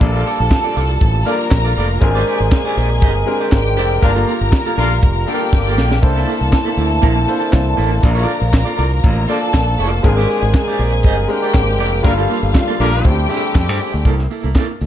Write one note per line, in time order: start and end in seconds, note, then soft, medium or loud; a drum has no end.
0.00 0.22 A#1 loud
0.00 12.01 D3 medium
0.00 2.00 F3 medium
0.00 1.97 G3 medium
0.00 3.98 A#3 medium
0.00 0.72 A#3 medium
0.00 0.72 D4 medium
0.00 2.00 F4 medium
0.00 0.73 F4 medium
0.00 1.24 A4 medium
0.00 0.73 A4 medium
0.00 0.73 D5 loud
0.00 1.24 A5 medium
0.00 muted clean electric guitar stroke soft
0.00 kick loud
0.00 closed hi-hat medium
0.14 0.25 F4 medium
0.14 0.26 A4 medium
0.14 0.27 D5 medium
0.26 0.39 F4 medium
0.26 0.40 A4 medium
0.26 0.39 D5 medium
0.26 open hi-hat medium
0.40 0.50 A#1 medium
0.40 muted clean electric guitar stroke soft
0.51 muted clean electric guitar stroke soft
0.51 kick loud
0.51 snare loud
0.51 clap medium
0.51 closed hi-hat medium
0.64 0.74 F4 medium
0.64 0.76 A4 medium
0.64 0.76 D5 medium
0.76 0.97 C2 medium
0.76 0.89 F4 medium
0.76 0.89 A4 medium
0.76 0.88 D5 medium
0.76 open hi-hat medium
0.89 muted clean electric guitar stroke soft
1.01 1.22 A1 loud
1.01 muted clean electric guitar stroke soft
1.01 kick loud
1.01 closed hi-hat medium
1.15 muted clean electric guitar stroke soft
1.25 1.79 A#3 medium
1.25 1.80 D4 medium
1.25 1.80 F4 medium
1.25 1.42 F4 medium
1.25 1.40 A4 medium
1.25 1.80 A#4 medium
1.25 2.00 A#4 medium
1.25 1.80 D5 loud
1.25 1.39 D5 medium
1.25 2.00 A#5 medium
1.25 open hi-hat medium
1.40 muted clean electric guitar stroke soft
1.51 1.72 A#1 medium
1.51 muted clean electric guitar stroke soft
1.51 kick loud
1.51 snare loud
1.51 clap loud
1.51 closed hi-hat medium
1.64 1.75 F4 medium
1.64 1.76 A4 medium
1.64 1.76 D5 medium
1.77 1.98 F1 medium
1.77 1.92 F4 medium
1.77 1.90 A4 medium
1.77 1.89 D5 loud
1.77 open hi-hat medium
1.90 muted clean electric guitar stroke medium
2.01 2.22 G#1 loud
2.01 2.72 G#3 medium
2.01 4.00 G#3 medium
2.01 2.73 C4 medium
2.01 4.00 C4 medium
2.01 2.73 D4 medium
2.01 3.49 G#4 medium
2.01 2.73 G#4 medium
2.01 4.00 A#4 medium
2.01 2.73 A#4 loud
2.01 3.49 G#5 medium
2.01 muted clean electric guitar stroke soft
2.01 kick loud
2.01 closed hi-hat medium
2.15 2.26 G4 medium
2.15 2.26 C5 medium
2.15 2.27 D5 medium
2.15 snare soft
2.27 2.39 G4 medium
2.27 2.40 C5 medium
2.27 2.39 D5 medium
2.27 open hi-hat medium
2.40 2.50 G#1 loud
2.40 muted clean electric guitar stroke soft
2.52 muted clean electric guitar stroke soft
2.52 kick loud
2.52 snare loud
2.52 clap medium
2.52 closed hi-hat medium
2.65 2.76 G4 medium
2.65 2.77 C5 medium
2.65 2.78 D5 medium
2.77 3.02 A#1 medium
2.77 2.90 G4 medium
2.77 2.89 D5 medium
2.77 open hi-hat medium
2.90 muted clean electric guitar stroke medium
3.01 3.23 G1 medium
3.01 3.18 G4 medium
3.01 3.15 C5 medium
3.01 3.15 D#5 medium
3.01 kick loud
3.01 closed hi-hat medium
3.15 muted clean electric guitar stroke soft
3.26 3.80 G#3 medium
3.26 3.80 C4 medium
3.26 3.80 D4 medium
3.26 3.81 G4 medium
3.26 3.81 A#4 loud
3.26 muted clean electric guitar stroke soft
3.26 open hi-hat medium
3.41 3.52 G4 soft
3.41 3.52 C5 medium
3.41 3.52 D5 medium
3.52 3.78 G#1 medium
3.52 4.02 G4 medium
3.52 4.02 G5 medium
3.52 kick loud
3.52 snare loud
3.52 clap medium
3.52 closed hi-hat medium
3.66 muted clean electric guitar stroke soft
3.77 3.99 F1 medium
3.77 3.93 G4 loud
3.77 3.90 C5 loud
3.77 3.89 D5 loud
3.77 open hi-hat medium
3.90 muted clean electric guitar stroke soft
4.01 4.23 G1 loud
4.01 6.00 G3 medium
4.01 4.73 A#3 medium
4.01 12.00 A#3 medium
4.01 4.11 A#3 loud
4.01 4.73 D4 medium
4.01 4.11 D4 loud
4.01 6.00 F4 medium
4.01 4.73 F4 medium
4.01 4.11 F4 loud
4.01 4.73 G4 medium
4.01 4.11 A#4 loud
4.01 4.74 A#4 loud
4.01 5.26 A#4 medium
4.01 5.26 A#5 medium
4.01 muted clean electric guitar stroke soft
4.01 kick loud
4.01 closed hi-hat medium
4.15 4.26 A#3 medium
4.15 4.27 F4 medium
4.15 4.28 A4 medium
4.27 4.40 A#3 medium
4.27 4.40 F4 medium
4.27 4.40 A4 medium
4.27 open hi-hat medium
4.41 4.51 G1 medium
4.52 muted clean electric guitar stroke medium
4.52 kick loud
4.52 snare loud
4.52 clap medium
4.52 closed hi-hat medium
4.66 4.76 A#3 medium
4.66 4.77 F4 medium
4.66 4.78 A4 medium
4.77 4.98 A#1 medium
4.77 4.90 A#3 medium
4.77 4.94 A#3 loud
4.77 4.94 D4 medium
4.77 4.94 F4 loud
4.77 4.91 F4 medium
4.77 4.90 A4 medium
4.77 4.94 A#4 loud
4.77 open hi-hat medium
4.91 muted clean electric guitar stroke soft
5.02 5.24 F1 medium
5.02 muted clean electric guitar stroke soft
5.02 kick loud
5.02 closed hi-hat medium
5.16 muted clean electric guitar stroke soft
5.27 5.43 A#3 medium
5.27 5.81 D4 medium
5.27 5.81 F4 medium
5.27 5.41 F4 medium
5.27 6.02 G4 medium
5.27 5.81 G4 medium
5.27 5.34 A4 medium
5.27 5.40 A4 medium
5.27 6.02 G5 medium
5.27 open hi-hat medium
5.34 5.84 A#4 medium
5.41 muted clean electric guitar stroke soft
5.53 5.78 G1 medium
5.53 muted clean electric guitar stroke soft
5.53 kick loud
5.53 snare medium
5.66 5.76 A#3 medium
5.66 5.77 F4 medium
5.66 5.78 A4 medium
5.77 5.99 A#1 medium
5.77 5.90 A#3 medium
5.77 5.91 F4 medium
5.77 5.90 A4 medium
5.77 snare medium
5.91 muted clean electric guitar stroke soft
5.91 snare loud
6.01 6.24 C2 loud
6.01 6.73 A#3 medium
6.01 8.02 C4 medium
6.01 6.74 D4 medium
6.01 6.74 E4 medium
6.01 8.01 E4 medium
6.01 6.74 A4 medium
6.01 8.00 A4 medium
6.01 6.74 C5 loud
6.01 8.00 A5 medium
6.01 muted clean electric guitar stroke soft
6.01 kick loud
6.01 closed hi-hat medium
6.16 6.26 A#3 medium
6.16 6.27 E4 medium
6.16 6.28 A4 medium
6.16 snare soft
6.27 6.40 A#3 medium
6.27 6.41 E4 medium
6.27 6.40 A4 medium
6.27 open hi-hat medium
6.41 6.51 C2 medium
6.41 muted clean electric guitar stroke medium
6.52 muted clean electric guitar stroke soft
6.52 kick loud
6.52 snare loud
6.52 clap loud
6.52 closed hi-hat medium
6.65 6.76 A#3 medium
6.65 6.77 E4 medium
6.65 6.77 A4 medium
6.77 6.98 D2 medium
6.77 6.90 A#3 medium
6.77 6.91 E4 medium
6.77 6.89 A4 medium
6.77 open hi-hat medium
6.91 muted clean electric guitar stroke soft
7.02 7.24 A#1 medium
7.02 7.18 A#3 medium
7.02 7.15 E4 loud
7.02 7.15 A#4 loud
7.02 kick loud
7.02 closed hi-hat medium
7.15 muted clean electric guitar stroke soft
7.27 7.81 A#3 medium
7.27 7.81 D4 medium
7.27 7.82 E4 medium
7.27 7.82 A4 medium
7.27 7.82 C5 medium
7.27 muted clean electric guitar stroke soft
7.27 open hi-hat medium
7.40 7.53 A#3 soft
7.40 7.52 E4 medium
7.40 7.52 A4 medium
7.53 7.74 C2 medium
7.53 kick loud
7.53 snare loud
7.53 clap loud
7.53 closed hi-hat medium
7.66 muted clean electric guitar stroke soft
7.77 7.99 A1 medium
7.77 7.93 A#3 medium
7.77 7.90 E4 medium
7.77 7.89 A4 loud
7.77 open hi-hat medium
7.91 muted clean electric guitar stroke soft
8.02 8.24 A#1 loud
8.02 10.02 F3 medium
8.02 8.74 A#3 medium
8.02 8.74 D4 medium
8.02 8.75 F4 medium
8.02 10.02 F4 medium
8.02 8.75 A#4 medium
8.02 9.27 A#4 medium
8.02 8.75 D5 loud
8.02 9.27 A#5 medium
8.02 muted clean electric guitar stroke soft
8.02 kick loud
8.02 closed hi-hat medium
8.15 8.26 F4 medium
8.15 8.27 A4 medium
8.15 8.27 D5 loud
8.27 8.40 F4 medium
8.27 8.40 A4 medium
8.27 8.39 D5 medium
8.27 open hi-hat medium
8.41 8.62 A#1 medium
8.41 muted clean electric guitar stroke medium
8.52 muted clean electric guitar stroke soft
8.52 kick loud
8.52 snare loud
8.52 clap loud
8.52 closed hi-hat medium
8.65 8.76 F4 medium
8.65 8.77 A4 medium
8.65 8.77 D5 medium
8.77 8.99 C2 loud
8.77 8.90 F4 medium
8.77 8.91 A4 medium
8.77 8.90 D5 medium
8.77 open hi-hat medium
8.91 muted clean electric guitar stroke medium
9.03 9.25 A1 loud
9.03 muted clean electric guitar stroke soft
9.03 kick loud
9.03 closed hi-hat medium
9.16 muted clean electric guitar stroke soft
9.28 9.82 A#3 medium
9.28 9.82 D4 medium
9.28 9.44 F4 loud
9.28 9.82 F4 medium
9.28 9.42 A4 medium
9.28 9.82 A4 medium
9.28 10.03 A4 medium
9.28 9.83 D5 medium
9.28 9.41 D5 loud
9.28 10.03 A5 medium
9.28 open hi-hat medium
9.42 muted clean electric guitar stroke soft
9.54 9.75 A#1 medium
9.54 kick loud
9.54 snare loud
9.54 clap medium
9.54 closed hi-hat medium
9.67 muted clean electric guitar stroke soft
9.78 10.00 F1 medium
9.78 9.99 F4 medium
9.78 9.92 A4 medium
9.78 9.90 D5 loud
9.78 open hi-hat medium
9.92 muted clean electric guitar stroke medium
10.03 10.25 G#1 loud
10.03 10.75 G#3 medium
10.03 12.03 G#3 medium
10.03 10.75 C4 medium
10.03 12.03 C4 medium
10.03 10.75 D4 medium
10.03 10.75 G#4 medium
10.03 11.27 G#4 medium
10.03 10.75 A#4 loud
10.03 12.03 A#4 medium
10.03 11.27 G#5 medium
10.03 muted clean electric guitar stroke soft
10.03 kick loud
10.03 closed hi-hat medium
10.17 10.28 G4 medium
10.17 10.29 C5 medium
10.17 10.29 D5 medium
10.17 snare soft
10.29 10.42 G4 medium
10.29 10.41 D5 medium
10.29 open hi-hat medium
10.42 10.52 G#1 medium
10.42 muted clean electric guitar stroke medium
10.54 muted clean electric guitar stroke soft
10.54 kick loud
10.54 snare loud
10.54 clap medium
10.54 closed hi-hat medium
10.68 10.78 G4 medium
10.68 10.79 C5 medium
10.68 10.80 D5 loud
10.79 11.04 A#1 medium
10.79 10.92 G4 medium
10.79 10.92 C5 medium
10.79 10.91 D5 medium
10.79 open hi-hat medium
10.92 muted clean electric guitar stroke soft
11.03 11.25 G1 loud
11.03 11.20 G4 medium
11.03 11.18 C5 loud
11.03 11.18 D#5 loud
11.03 kick loud
11.03 closed hi-hat medium
11.18 muted clean electric guitar stroke soft
11.28 11.82 G#3 medium
11.28 11.83 C4 medium
11.28 11.83 D4 medium
11.28 11.83 G4 medium
11.28 12.04 G4 medium
11.28 11.83 A#4 medium
11.28 12.04 G5 medium
11.28 muted clean electric guitar stroke soft
11.28 open hi-hat medium
11.43 11.55 G4 medium
11.43 11.54 C5 medium
11.43 11.54 D5 medium
11.54 11.79 G#1 medium
11.54 kick loud
11.54 snare loud
11.54 clap medium
11.54 closed hi-hat medium
11.68 muted clean electric guitar stroke soft
11.79 12.00 F1 medium
11.79 11.95 G4 loud
11.79 11.93 C5 loud
11.79 11.92 D5 loud
11.79 open hi-hat medium
11.93 muted clean electric guitar stroke medium
12.03 12.25 G1 loud
12.03 14.04 D3 medium
12.03 14.03 F3 medium
12.03 12.75 G3 medium
12.03 14.04 G3 medium
12.03 12.75 A#3 medium
12.03 12.13 A#3 loud
12.03 13.04 A#3 medium
12.03 12.75 D4 medium
12.03 12.13 D4 medium
12.03 12.76 F4 medium
12.03 12.13 F4 medium
12.03 13.03 F4 medium
12.03 13.04 F4 medium
12.03 12.76 A4 loud
12.03 12.13 A#4 loud
12.03 13.03 F5 medium
12.03 muted clean electric guitar stroke soft
12.03 kick loud
12.03 closed hi-hat medium
12.18 12.29 A#3 medium
12.18 12.29 F4 medium
12.18 12.30 A4 medium
12.30 12.42 A#3 medium
12.30 12.43 F4 medium
12.30 12.42 A4 medium
12.30 open hi-hat medium
12.43 12.53 G1 medium
12.43 muted clean electric guitar stroke soft
12.55 muted clean electric guitar stroke soft
12.55 kick loud
12.55 snare loud
12.55 clap medium
12.55 closed hi-hat medium
12.68 12.78 A#3 medium
12.68 12.79 F4 medium
12.68 12.80 A4 medium
12.79 13.01 A#1 loud
12.79 12.92 A#3 medium
12.79 13.12 A#3 loud
12.79 13.12 D4 medium
12.79 12.93 F4 medium
12.79 13.12 G4 loud
12.79 12.92 A4 medium
12.79 13.12 A#4 loud
12.79 open hi-hat medium
13.04 13.26 D2 loud
13.04 13.25 G3 medium
13.04 13.25 A3 medium
13.04 13.25 C4 medium
13.04 14.05 C4 medium
13.04 13.25 D4 medium
13.04 14.04 G4 medium
13.04 14.05 G4 medium
13.04 13.25 A4 medium
13.04 14.04 G5 medium
13.04 muted clean electric guitar stroke soft
13.04 kick loud
13.04 closed hi-hat medium
13.18 muted clean electric guitar stroke soft
13.28 13.83 G3 medium
13.28 13.83 A3 medium
13.28 13.83 C4 medium
13.28 13.83 D4 medium
13.28 13.46 G4 medium
13.28 13.36 G#4 medium
13.28 13.43 C5 medium
13.28 13.42 D5 medium
13.28 open hi-hat medium
13.36 13.87 A4 medium
13.43 muted clean electric guitar stroke soft
13.55 13.69 F2 medium
13.55 muted clean electric guitar stroke soft
13.55 kick loud
13.55 snare loud
13.55 clap loud
13.55 closed hi-hat medium
13.68 13.79 G2 medium
13.68 13.79 G4 medium
13.68 13.80 C5 medium
13.68 13.80 D5 medium
13.80 13.93 G4 medium
13.80 13.93 C5 medium
13.80 13.93 D5 medium
13.80 open hi-hat medium
13.94 14.04 D2 medium
13.94 muted clean electric guitar stroke medium
14.05 14.26 C2 loud
14.05 14.21 A#3 medium
14.05 14.22 E4 medium
14.05 14.22 A4 medium
14.05 kick loud
14.05 closed hi-hat medium
14.19 snare soft
14.30 14.43 A#3 medium
14.30 14.43 E4 medium
14.30 14.42 A4 medium
14.30 open hi-hat medium
14.44 14.54 C2 medium
14.44 14.54 A#3 soft
14.44 14.55 E4 soft
14.44 14.55 A4 medium
14.55 14.71 A#3 medium
14.55 14.69 E4 medium
14.55 14.68 A4 medium
14.55 kick loud
14.55 snare loud
14.55 clap medium
14.55 closed hi-hat soft
14.69 muted clean electric guitar stroke soft
14.81 14.86 D2 medium
14.81 muted clean electric guitar stroke soft
14.81 open hi-hat medium